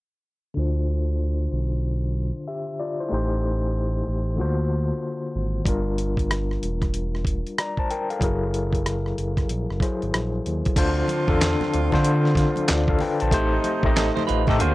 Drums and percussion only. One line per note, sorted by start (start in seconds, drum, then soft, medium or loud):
5.66 kick medium
5.66 closed hi-hat medium
5.98 closed hi-hat medium
6.17 kick medium
6.17 closed hi-hat soft
6.31 cross-stick medium
6.31 closed hi-hat medium
6.51 cross-stick soft
6.63 closed hi-hat medium
6.82 kick medium
6.82 cross-stick soft
6.82 closed hi-hat soft
6.94 closed hi-hat medium
7.15 cross-stick soft
7.25 kick medium
7.25 closed hi-hat medium
7.47 closed hi-hat soft
7.58 cross-stick loud
7.58 closed hi-hat medium
7.77 kick medium
7.91 closed hi-hat soft
8.10 closed hi-hat soft
8.21 kick medium
8.21 closed hi-hat medium
8.54 closed hi-hat medium
8.73 kick medium
8.73 closed hi-hat soft
8.86 cross-stick medium
8.86 closed hi-hat medium
9.06 cross-stick soft
9.18 closed hi-hat medium
9.37 kick medium
9.37 cross-stick soft
9.37 closed hi-hat soft
9.49 closed hi-hat medium
9.70 cross-stick soft
9.80 kick medium
9.80 cross-stick soft
9.80 closed hi-hat soft
10.02 closed hi-hat soft
10.14 cross-stick loud
10.14 closed hi-hat medium
10.46 closed hi-hat soft
10.65 kick medium
10.65 closed hi-hat soft
10.76 kick loud
10.76 closed hi-hat medium
10.76 crash loud
10.76 muted conga soft
11.08 closed hi-hat medium
11.08 muted conga soft
11.08 high conga medium
11.28 kick medium
11.41 snare loud
11.41 clap medium
11.41 closed hi-hat medium
11.61 snare soft
11.61 high conga medium
11.61 low conga medium
11.74 closed hi-hat medium
11.92 kick medium
11.92 snare soft
11.92 high conga soft
11.92 low conga medium
12.05 closed hi-hat medium
12.05 muted conga soft
12.25 snare soft
12.35 kick loud
12.35 snare soft
12.35 closed hi-hat medium
12.56 closed hi-hat soft
12.56 high conga medium
12.68 snare loud
12.68 clap loud
12.68 closed hi-hat medium
12.68 muted conga soft
12.88 kick medium
12.99 open hi-hat soft
12.99 low conga medium
13.20 closed hi-hat medium
13.31 kick loud
13.31 closed hi-hat medium
13.64 closed hi-hat medium
13.64 high conga medium
13.83 kick loud
13.97 snare loud
13.97 clap medium
13.97 closed hi-hat medium
14.17 snare soft
14.17 high conga medium
14.17 low conga medium
14.28 closed hi-hat medium
14.28 muted conga soft
14.47 kick medium
14.47 snare soft
14.47 high conga soft
14.47 low conga medium
14.59 closed hi-hat medium
14.59 muted conga soft